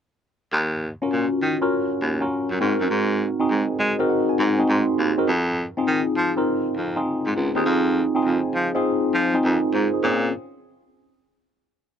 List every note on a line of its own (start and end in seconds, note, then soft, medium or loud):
0.53 0.90 D#2 loud
1.02 1.37 C#4 medium
1.02 1.37 F4 medium
1.02 1.37 F#4 medium
1.02 1.37 A#4 medium
1.12 1.27 A#2 medium
1.42 1.57 D#3 medium
1.61 1.96 C#4 loud
1.61 1.96 F4 medium
1.61 1.97 F#4 medium
1.61 1.97 A#4 loud
2.01 2.23 D#2 medium
2.21 2.56 C#4 medium
2.21 2.56 F4 medium
2.21 2.56 F#4 medium
2.21 2.56 A#4 medium
2.51 2.58 F#2 medium
2.60 2.75 G#2 medium
2.60 3.20 C4 loud
2.60 3.20 D#4 medium
2.60 3.20 F#4 medium
2.60 3.20 A#4 loud
2.80 2.88 F#2 medium
2.90 3.27 G#2 loud
3.40 3.74 C4 medium
3.40 3.75 D#4 medium
3.40 3.75 F#4 medium
3.40 3.75 G#4 loud
3.50 3.64 G#2 medium
3.79 3.94 G#3 medium
3.79 4.07 D#5 medium
3.99 4.34 C4 medium
3.99 4.34 D#4 medium
3.99 4.34 F#4 loud
3.99 4.34 A#4 loud
4.09 4.28 F#5 medium
4.29 4.66 G#5 medium
4.39 4.61 G#2 medium
4.59 4.93 C4 medium
4.59 4.94 D#4 medium
4.59 4.94 F#4 medium
4.59 4.94 G#4 medium
4.69 4.83 G#2 loud
4.69 5.24 C6 medium
4.99 5.13 D#2 medium
5.18 5.28 C4 medium
5.18 5.28 D#4 medium
5.18 5.28 F#4 medium
5.18 5.28 A#4 loud
5.28 5.65 F2 loud
5.77 6.12 C4 loud
5.77 6.12 D#4 medium
5.77 6.13 F4 medium
5.77 6.13 G#4 loud
5.88 6.02 D#3 medium
6.17 6.32 F3 medium
6.37 6.72 C4 loud
6.37 6.72 D#4 medium
6.37 6.72 F4 medium
6.37 6.72 A#4 loud
6.77 6.99 F2 medium
6.96 7.31 C4 medium
6.96 7.31 D#4 medium
6.96 7.31 F4 medium
6.96 7.31 G#4 medium
7.26 7.33 G#2 medium
7.36 7.51 C#2 medium
7.55 7.63 D#2 medium
7.55 7.90 C4 medium
7.55 7.91 D#4 medium
7.55 7.91 F4 medium
7.55 7.91 G#4 loud
7.66 8.02 F2 loud
8.15 8.50 C4 medium
8.15 8.50 D#4 medium
8.15 8.50 F4 medium
8.15 8.50 G#4 loud
8.25 8.40 F2 medium
8.55 8.70 F3 medium
8.74 9.09 C4 loud
8.74 9.09 D#4 medium
8.74 9.10 F4 medium
8.74 9.10 G#4 loud
9.14 9.36 F3 medium
9.34 9.69 C4 medium
9.34 9.44 D#4 medium
9.34 9.44 F4 medium
9.34 9.44 G#4 medium
9.44 9.59 F2 medium
9.44 9.73 F4 medium
9.44 9.72 A#4 medium
9.74 9.88 G#2 medium
9.74 9.93 F4 medium
9.74 9.92 C5 medium
9.94 10.22 D#4 soft
9.94 10.03 G#4 medium
10.03 10.31 A#2 loud
10.03 10.31 C4 medium
10.03 10.31 C#4 medium
10.03 10.31 F4 medium
10.03 10.31 G#4 medium